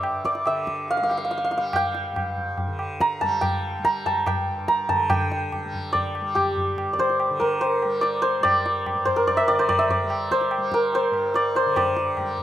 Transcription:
Already playing: tanpura G2 D3 G3, santur D5 E5 G5
0.03 tabla na
0.25 santur D5, tabla ke
0.35 tabla te
0.46 tanpura D3, santur E5, tabla na
0.67 tabla ke
0.88 santur F5, tabla tin
0.97 santur F5
1.01 tanpura G3, santur F5
1.10 santur F5, tabla na
1.17 santur F5
1.25 santur F5
1.31 santur F5, tabla te
1.38 santur F5
1.44 santur F5
1.51 santur F5, tabla te
1.56 tanpura G3, santur F5
1.73 santur G5, tabla na, tabla ge
1.95 tabla te
2.12 tanpura G2, tabla na, tabla ge
2.37 tabla ge
2.58 tabla tin, tabla ge
2.67 tanpura D3
2.79 tabla na
3.00 santur A#5, tabla ke
3.21 tanpura G3, santur A5, tabla tin, tabla ge
3.41 santur G5, tabla na, tabla ge
3.79 tanpura G3
3.85 santur A#5, tabla ke
4.06 santur A5, tabla tin, tabla ge
4.26 santur G5, tabla na, tabla ge
4.34 tanpura G2
4.68 santur A#5, tabla ke
4.89 tanpura D3, santur A5, tabla tin, tabla ge
5.10 tanpura D3, santur G5, tabla na, tabla ge
5.31 tabla te
5.52 tabla na, tabla ge
5.65 tanpura G3
5.74 tabla ge
5.93 santur D5, tabla tin, tabla ge
6.15 tabla na
6.21 tanpura G3
6.35 santur G4, tabla na, tabla ge
6.57 tabla ge
6.75 tanpura G2, tabla na
6.93 santur D5
6.99 santur C5, tabla ke
7.10 tabla te
7.20 tabla na
7.30 tanpura D3
7.40 santur A#4, tabla ke
7.61 santur C5, tabla tin
7.82 tanpura G3, tabla na
8.01 santur D5, tabla te
8.22 santur C5, tabla te
8.40 tanpura G3, santur D5
8.45 tabla na, tabla ge
8.66 tabla te
8.86 tabla na, tabla ge
8.95 tanpura G2
9.05 santur C5, tabla ge
9.16 santur A#4
9.27 santur D5, tabla tin, tabla ge
9.37 santur E5
9.48 tanpura D3, santur D5, tabla na
9.59 santur C5
9.69 santur D5, tabla na, tabla ge
9.79 santur E5
9.89 santur D5, tabla ge
10.03 tanpura G3
10.10 tabla na
10.31 santur C5, tabla ke
10.41 tabla te
10.51 tabla na
10.58 tanpura G3
10.72 santur A#4, tabla ke
10.93 santur C5, tabla tin
11.11 tanpura G2, tabla na
11.34 santur D5, tabla te
11.55 santur C5, tabla te
11.66 tanpura D3
11.76 santur D5, tabla na, tabla ge
11.97 tabla te
12.17 tanpura G3, tabla na, tabla ge
12.38 tabla ge

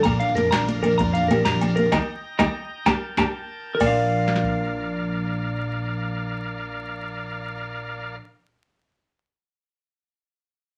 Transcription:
Already playing: clean electric guitar A#3
0.03 fingered electric bass A#1, clean electric guitar A#2 A#5, tonewheel organ D5 F5 A#5, muted clean electric guitar stroke, kick, ride, muted conga, low agogo, shekere
0.11 shekere
0.20 clean electric guitar D4 F5, ride, low conga
0.27 low conga, shekere
0.35 fingered electric bass F2, clean electric guitar F3 A#4, ride, muted conga, shekere
0.43 shekere
0.51 fingered electric bass A#1, clean electric guitar D4 A#5, snare, ride, low agogo
0.59 low conga, shekere
0.67 clean electric guitar F2 A#3, ride, muted conga
0.77 low conga
0.83 fingered electric bass A#1, clean electric guitar D4 A#4, ride, high conga, low agogo
0.91 low conga, shekere
0.98 fingered electric bass F2, clean electric guitar A#2 F4 A#5, kick, ride, muted conga
1.07 shekere
1.14 clean electric guitar D4 F5, ride, shekere
1.23 low conga
1.28 fingered electric bass A#1, clean electric guitar F3 G4 A#4, ride, muted conga, high conga, low conga, low agogo
1.45 fingered electric bass A#1, clean electric guitar D4 A#5, snare, ride, shekere
1.54 low conga, shekere
1.61 clean electric guitar F2, muted clean electric guitar stroke, ride, muted conga, low conga, low agogo, shekere
1.68 shekere
1.76 clean electric guitar D4 A#4, ride, high conga
1.85 low conga, shekere
1.92 fingered electric bass D#2, clean electric guitar G3 A#3 D#4 D#5 G5 A#5, tonewheel organ D#5 G5, kick, snare, muted conga, low agogo, shekere
2.39 fingered electric bass D#2, clean electric guitar G3 A#3 D#4 D#5 G5 A#5, kick, snare, muted conga, low agogo, shekere
2.85 fingered electric bass G1, clean electric guitar A#3 D4 G4 G5 A5 A#5, tonewheel organ A#4 A5, kick, snare, muted conga, low agogo, shekere
3.17 fingered electric bass G1, clean electric guitar A#3 D4 G4 G5 A5 A#5, kick, snare, muted conga, low agogo, shekere
3.75 clean electric guitar A#4
3.80 fingered electric bass A#1, clean electric guitar A#2 F3 D5, tonewheel organ A#4 D5 F5, kick, crash, muted conga, low agogo, shekere
3.85 clean electric guitar D4 F5, muted clean electric guitar stroke
3.89 clean electric guitar F4
4.28 snare
4.36 snare
4.43 kick

